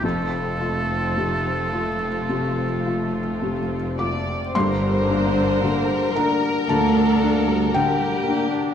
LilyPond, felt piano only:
<<
  \new Staff \with { instrumentName = "Felt piano" } { \time 4/4 \key g \minor \tempo 4 = 55 r2. r8 d'''8 | c'''4. bes''8 a''4 g''4 | }
  \new Staff \with { instrumentName = "Felt piano" } { \clef bass \time 4/4 \key g \minor f,8 f'8 c8 f'8 c8 f'8 c8 f'8 | g,8 d'8 d8 d'8 d8 d'8 d8 d'8 | }
>>